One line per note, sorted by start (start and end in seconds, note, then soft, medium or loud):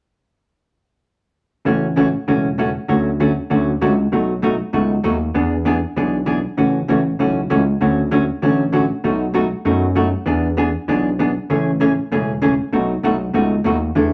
1.65 2.15 A1 medium
1.65 1.86 C#3 medium
1.65 1.86 E3 medium
1.65 1.86 A3 medium
1.65 1.86 C#4 medium
1.65 1.86 F#4 medium
1.96 2.07 C#3 medium
1.96 2.08 E3 medium
1.96 2.08 A3 medium
1.96 2.08 C#4 medium
1.96 2.08 F#4 medium
2.27 2.76 E1 medium
2.27 2.48 C#3 medium
2.27 2.48 E3 medium
2.27 2.48 A3 medium
2.27 2.48 C#4 medium
2.27 2.48 F#4 medium
2.58 2.69 C#3 medium
2.58 2.69 E3 medium
2.58 2.69 A3 medium
2.58 2.70 C#4 medium
2.58 2.70 F#4 medium
2.88 3.38 D2 medium
2.88 3.09 D3 medium
2.88 3.09 F#3 medium
2.88 3.09 A3 medium
2.88 3.09 C#4 medium
2.88 3.09 F#4 medium
3.20 3.31 D3 medium
3.20 3.31 F#3 medium
3.20 3.31 A3 medium
3.20 3.31 C#4 medium
3.20 3.31 F#4 medium
3.50 3.77 D2 medium
3.50 3.70 D3 medium
3.50 3.70 F#3 soft
3.50 3.71 A3 medium
3.50 3.71 C#4 medium
3.50 3.71 F#4 medium
3.81 4.07 C#2 medium
3.81 3.92 D3 medium
3.81 3.92 F#3 medium
3.81 3.93 A3 medium
3.81 3.93 C#4 medium
3.81 3.93 F#4 medium
4.12 4.61 B1 medium
4.12 4.32 B2 medium
4.12 4.32 F#3 medium
4.12 4.32 A3 medium
4.12 4.33 D#4 medium
4.12 4.33 F#4 medium
4.42 4.54 B2 medium
4.42 4.54 F#3 medium
4.42 4.54 A3 medium
4.42 4.54 D#4 medium
4.42 4.54 F#4 medium
4.73 4.99 C#2 medium
4.73 4.93 B2 medium
4.73 4.93 F#3 medium
4.73 4.94 A3 medium
4.73 4.94 D#4 medium
4.73 4.94 F#4 medium
5.04 5.30 D#2 medium
5.04 5.15 B2 medium
5.04 5.15 F#3 medium
5.04 5.15 A3 medium
5.04 5.15 D#4 medium
5.04 5.15 F#4 medium
5.34 5.84 E2 medium
5.34 5.55 E3 medium
5.34 5.55 B3 medium
5.34 5.55 D4 medium
5.34 5.55 G#4 medium
5.65 5.76 E3 medium
5.65 5.77 B3 medium
5.65 5.77 D4 medium
5.65 5.77 G#4 medium
5.96 6.46 B1 medium
5.96 6.16 E3 medium
5.96 6.17 B3 medium
5.96 6.17 D4 medium
5.96 6.17 G#4 medium
6.26 6.38 E3 medium
6.26 6.38 B3 medium
6.26 6.38 D4 medium
6.26 6.38 G#4 medium
6.57 6.83 A1 medium
6.57 6.78 C#3 medium
6.57 6.78 E3 medium
6.57 6.78 A3 medium
6.57 6.78 C#4 medium
6.57 6.78 F#4 medium
6.88 7.15 A1 medium
6.88 7.00 C#3 medium
6.88 7.00 E3 medium
6.88 7.00 A3 medium
6.88 7.00 C#4 medium
6.88 7.00 F#4 medium
7.19 7.46 B1 medium
7.19 7.39 C#3 medium
7.19 7.40 E3 medium
7.19 7.40 A3 medium
7.19 7.40 C#4 medium
7.19 7.40 F#4 medium
7.50 7.77 C#2 medium
7.50 7.61 C#3 medium
7.50 7.61 E3 medium
7.50 7.61 A3 medium
7.50 7.62 C#4 medium
7.50 7.62 F#4 medium
7.81 8.30 D2 medium
7.81 8.01 D3 medium
7.81 8.01 F#3 medium
7.81 8.01 A3 medium
7.81 8.01 C#4 medium
7.81 8.02 F#4 medium
8.11 8.22 D3 medium
8.11 8.23 F#3 medium
8.11 8.23 A3 medium
8.11 8.23 C#4 medium
8.11 8.23 F#4 medium
8.42 8.92 A1 medium
8.42 8.62 D3 medium
8.42 8.62 F#3 medium
8.42 8.63 A3 medium
8.42 8.63 C#4 medium
8.42 8.63 F#4 medium
8.72 8.84 D3 medium
8.72 8.84 F#3 medium
8.72 8.84 A3 medium
8.72 8.84 C#4 medium
8.72 8.84 F#4 medium
9.04 9.53 B1 medium
9.04 9.24 B2 medium
9.04 9.24 F#3 medium
9.04 9.24 A3 medium
9.04 9.24 D#4 medium
9.04 9.25 F#4 medium
9.34 9.45 B2 medium
9.34 9.45 F#3 medium
9.34 9.46 A3 medium
9.34 9.46 D#4 medium
9.34 9.46 F#4 medium
9.65 10.14 F#2 medium
9.65 9.85 B2 medium
9.65 9.85 F#3 medium
9.65 9.85 A3 medium
9.65 9.86 D#4 medium
9.65 9.86 F#4 medium
9.95 10.07 B2 medium
9.95 10.07 F#3 medium
9.95 10.07 A3 medium
9.95 10.07 D#4 medium
9.95 10.07 F#4 medium
10.26 10.76 E2 medium
10.26 10.46 E3 medium
10.26 10.47 B3 medium
10.26 10.47 D4 medium
10.26 10.47 G#4 medium
10.57 10.68 E3 medium
10.57 10.69 B3 medium
10.57 10.69 D4 medium
10.57 10.69 G#4 medium
10.88 11.37 B1 medium
10.88 11.08 E3 medium
10.88 11.08 B3 medium
10.88 11.09 D4 medium
10.88 11.09 G#4 medium
11.19 11.30 E3 medium
11.19 11.30 B3 medium
11.19 11.30 D4 medium
11.19 11.31 G#4 medium
11.49 11.99 A1 medium
11.49 11.70 C#3 medium
11.49 11.70 E3 medium
11.49 11.70 A3 medium
11.49 11.70 C#4 medium
11.49 11.70 G#4 medium
11.80 11.91 C#3 medium
11.80 11.92 E3 medium
11.80 11.92 A3 medium
11.80 11.92 C#4 medium
11.80 11.92 G#4 medium
12.11 12.60 E1 medium
12.11 12.31 C#3 medium
12.11 12.32 E3 medium
12.11 12.32 A3 medium
12.11 12.32 C#4 medium
12.11 12.32 G#4 medium
12.42 12.53 C#3 medium
12.42 12.53 E3 medium
12.42 12.53 A3 medium
12.42 12.53 C#4 medium
12.42 12.53 G#4 medium
12.73 12.97 B1 medium
12.73 12.93 B2 medium
12.73 12.93 F#3 medium
12.73 12.93 A3 medium
12.73 12.93 D#4 medium
12.73 12.93 F#4 medium
13.03 13.30 B1 medium
13.03 13.14 B2 medium
13.03 13.15 F#3 medium
13.03 13.15 A3 medium
13.03 13.15 D#4 medium
13.03 13.15 F#4 medium
13.34 13.60 C#2 medium
13.34 13.54 B2 medium
13.34 13.54 F#3 medium
13.34 13.54 A3 medium
13.34 13.54 D#4 medium
13.34 13.54 F#4 medium
13.64 13.91 D#2 medium
13.64 13.75 B2 medium
13.64 13.76 F#3 medium
13.64 13.76 A3 medium
13.64 13.76 D#4 medium
13.64 13.76 F#4 medium
13.95 14.13 E2 medium
13.95 14.13 E3 medium
13.95 14.13 A3 medium
13.95 14.13 D4 medium
13.95 14.13 E4 medium
13.95 14.13 A4 medium